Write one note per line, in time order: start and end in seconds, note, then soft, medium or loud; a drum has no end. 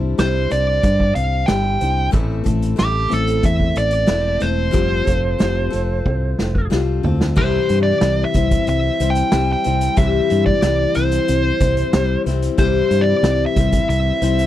0.00 0.14 C2 medium
0.00 0.17 G3 soft
0.00 0.17 D4 medium
0.00 0.19 E4 soft
0.00 0.18 C5 medium
0.18 0.46 C2 medium
0.18 0.51 G3 medium
0.18 0.51 D4 medium
0.18 0.52 E4 medium
0.18 0.49 C5 medium
0.18 snare loud
0.18 closed hi-hat medium
0.50 0.79 C2 medium
0.50 1.46 G3 soft
0.50 1.47 D4 soft
0.50 1.50 C5 medium
0.50 1.15 D5 medium
0.50 closed hi-hat medium
0.83 1.11 G2 medium
0.83 kick loud
0.83 closed hi-hat medium
1.00 kick medium
1.15 1.43 C2 medium
1.15 1.50 F5 medium
1.15 closed hi-hat medium
1.46 1.76 G1 medium
1.46 1.81 G3 medium
1.46 1.81 D4 medium
1.46 1.81 E4 medium
1.46 1.79 C5 medium
1.46 2.09 G5 medium
1.46 snare loud
1.46 closed hi-hat medium
1.81 2.09 C2 medium
1.81 2.12 G3 soft
1.81 2.13 D4 soft
1.81 2.12 E4 soft
1.81 2.12 C5 soft
1.81 closed hi-hat medium
2.11 2.41 A1 medium
2.11 2.45 A2 medium
2.11 2.46 E3 medium
2.11 2.45 A3 medium
2.11 2.44 C4 medium
2.11 2.43 E4 medium
2.11 2.43 A4 medium
2.11 kick loud
2.11 closed hi-hat medium
2.44 2.74 A1 medium
2.44 2.75 A3 soft
2.44 2.76 C4 soft
2.44 2.76 E4 medium
2.44 2.77 A4 medium
2.44 kick medium
2.44 closed hi-hat medium
2.62 closed hi-hat medium
2.76 3.07 A1 medium
2.76 3.10 A3 medium
2.76 3.09 C4 medium
2.76 3.09 E4 medium
2.76 3.13 G4 medium
2.76 3.07 A4 medium
2.76 snare loud
2.76 closed hi-hat medium
3.08 3.39 A1 medium
3.08 4.05 A3 soft
3.08 4.07 C4 soft
3.08 4.07 E4 soft
3.08 4.08 A4 soft
3.08 closed hi-hat medium
3.13 3.46 A4 medium
3.27 closed hi-hat medium
3.43 3.71 E2 medium
3.43 3.77 E5 loud
3.43 kick medium
3.43 closed hi-hat medium
3.60 kick medium
3.76 4.04 A1 medium
3.76 4.45 D5 loud
3.76 closed hi-hat medium
3.91 closed hi-hat medium
4.06 4.37 E1 medium
4.06 4.41 A3 medium
4.06 4.40 C4 medium
4.06 4.39 E4 medium
4.06 4.39 A4 medium
4.06 snare loud
4.06 closed hi-hat medium
4.40 4.69 E1 medium
4.40 4.72 A3 soft
4.40 4.72 C4 soft
4.40 4.73 E4 soft
4.40 4.72 A4 medium
4.40 6.67 C5 medium
4.40 closed hi-hat medium
4.71 5.02 F1 medium
4.71 5.06 F3 medium
4.71 5.06 G3 medium
4.71 5.07 C4 medium
4.71 5.05 F4 medium
4.71 5.04 A4 medium
4.71 kick loud
4.71 closed hi-hat medium
5.05 5.35 F1 medium
5.05 5.38 C4 soft
5.05 5.39 F4 soft
5.05 5.39 A4 soft
5.05 kick medium
5.05 closed hi-hat medium
5.39 5.68 F1 medium
5.39 5.72 G3 medium
5.39 5.72 C4 medium
5.39 5.71 F4 medium
5.39 5.69 A4 medium
5.39 snare loud
5.39 closed hi-hat medium
5.70 6.01 F1 medium
5.70 6.69 C4 soft
5.70 6.70 F4 medium
5.70 6.70 A4 medium
5.70 closed hi-hat medium
6.06 6.33 C2 medium
6.06 kick loud
6.39 6.67 F1 medium
6.39 snare medium
6.55 kick medium
6.70 6.99 C2 medium
6.70 7.03 G3 medium
6.70 7.03 C4 medium
6.70 7.04 F4 medium
6.70 7.02 A4 medium
6.70 snare medium
7.03 7.39 D2 medium
7.03 7.36 C4 soft
7.03 7.37 F4 medium
7.03 7.36 A4 medium
7.03 floor tom medium
7.21 snare medium
7.36 7.59 C2 medium
7.36 8.34 C3 medium
7.36 9.96 E3 medium
7.36 8.37 G3 medium
7.36 8.37 C4 medium
7.36 8.36 E4 medium
7.36 8.35 C5 medium
7.36 7.77 C5 medium
7.36 kick loud
7.36 crash loud
7.69 7.91 G2 medium
7.69 closed hi-hat medium
7.83 8.25 D5 medium
8.01 8.24 C2 medium
8.01 snare loud
8.01 closed hi-hat medium
8.25 8.68 E5 medium
8.34 8.56 C2 medium
8.34 9.03 G3 soft
8.34 9.02 C4 soft
8.34 9.01 E4 soft
8.34 9.00 C5 medium
8.34 kick medium
8.34 closed hi-hat medium
8.51 kick medium
8.51 closed hi-hat medium
8.67 8.89 C2 medium
8.67 9.09 E5 medium
8.67 closed hi-hat medium
9.00 9.22 C2 medium
9.00 9.30 G3 soft
9.00 9.31 C4 soft
9.00 9.32 E4 medium
9.00 9.33 C5 medium
9.00 closed hi-hat medium
9.10 9.51 G5 medium
9.15 closed hi-hat medium
9.31 9.54 C2 medium
9.31 9.64 G3 medium
9.31 9.65 C4 medium
9.31 9.65 E4 medium
9.31 9.64 C5 medium
9.31 snare loud
9.31 closed hi-hat medium
9.52 9.98 G5 medium
9.64 9.88 C2 medium
9.64 9.96 G3 soft
9.64 9.96 C4 soft
9.64 9.97 E4 medium
9.64 9.97 C5 soft
9.64 closed hi-hat medium
9.81 closed hi-hat medium
9.96 10.19 C2 medium
9.96 10.95 C3 medium
9.96 12.58 E3 medium
9.96 10.97 G3 medium
9.96 10.96 C4 medium
9.96 10.96 E4 medium
9.96 10.95 C5 medium
9.96 10.43 E5 loud
9.96 kick loud
9.96 closed hi-hat medium
10.30 10.53 G2 medium
10.30 closed hi-hat medium
10.46 10.97 D5 medium
10.46 kick medium
10.62 10.85 C2 medium
10.62 snare loud
10.62 closed hi-hat medium
10.95 11.18 C2 medium
10.95 11.62 G3 soft
10.95 11.62 C4 soft
10.95 11.61 E4 soft
10.95 11.60 C5 soft
10.95 12.22 C5 medium
10.95 closed hi-hat medium
11.12 closed hi-hat medium
11.28 11.50 C2 medium
11.28 closed hi-hat medium
11.60 11.82 C2 medium
11.60 11.92 G3 soft
11.60 11.93 C4 soft
11.60 11.94 E4 soft
11.60 11.93 C5 medium
11.60 kick medium
11.60 closed hi-hat medium
11.77 closed hi-hat medium
11.93 12.16 C2 medium
11.93 12.26 G3 medium
11.93 12.26 C4 medium
11.93 12.25 E4 medium
11.93 12.25 C5 medium
11.93 snare loud
11.93 closed hi-hat medium
12.26 12.48 C2 medium
12.26 12.57 G3 soft
12.26 12.58 C4 medium
12.26 12.58 E4 medium
12.26 12.59 C5 medium
12.26 snare soft
12.26 closed hi-hat medium
12.42 closed hi-hat medium
12.58 12.80 C2 medium
12.58 13.56 C3 medium
12.58 14.47 E3 medium
12.58 13.59 G3 medium
12.58 13.59 C4 medium
12.58 13.57 E4 medium
12.58 13.03 C5 medium
12.58 13.57 C5 medium
12.58 kick loud
12.58 closed hi-hat medium
12.91 13.13 G2 medium
12.91 closed hi-hat medium
13.01 13.46 D5 medium
13.23 13.45 C2 medium
13.23 snare loud
13.23 closed hi-hat medium
13.46 13.88 E5 medium
13.56 13.78 C2 medium
13.56 14.24 G3 soft
13.56 14.24 C4 soft
13.56 14.22 E4 medium
13.56 14.21 C5 medium
13.56 kick medium
13.56 closed hi-hat medium
13.72 kick medium
13.72 closed hi-hat medium
13.89 14.11 C2 medium
13.89 14.47 E5 medium
13.89 closed hi-hat medium
14.22 14.44 C2 medium
14.22 14.47 G3 soft
14.22 14.47 C4 soft
14.22 14.47 E4 medium
14.22 14.47 C5 medium
14.22 closed hi-hat medium
14.39 closed hi-hat medium